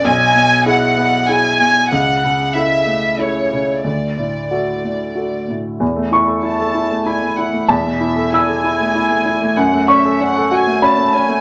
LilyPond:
<<
  \new Staff \with { instrumentName = "Violin section" } { \time 3/4 \key e \mixolydian \tempo 4 = 96 gis''4 fis''4 gis''4 | fis''4 e''4 cis''4 | d''2~ d''8 r8 | r4 a''4 gis''8 fis''8 |
e''4 gis''2 | fis''8 e''8 fis''8 gis''8 a''8 gis''8 | }
  \new Staff \with { instrumentName = "Upright piano" } { \time 3/4 \key e \mixolydian << { r2. | r2. | r2. | r8 cis'''4. b''4 |
a''4 e'''4. r8 | r8 cis'''4. b''4 | } \\ { b,,8 b,8 <e' gis'>8 b8 <e' gis'>8 b,8 | cis,8 cis8 <e' a'>8 a8 <e' a'>8 cis8 | d,8 a,8 <fis' a'>8 a8 <fis' a'>8 a,8 | e,16 a16 e'16 a'16 e'16 a'16 e'16 a16 e'16 a16 e'16 a16 |
e,16 b,16 e'16 a'16 e'16 a'16 e'16 a16 e'16 a16 e'16 a16 | fis,16 a16 cis'16 a'16 cis'16 a'16 fis'16 a16 cis'16 a16 cis'16 a16 | } >> }
>>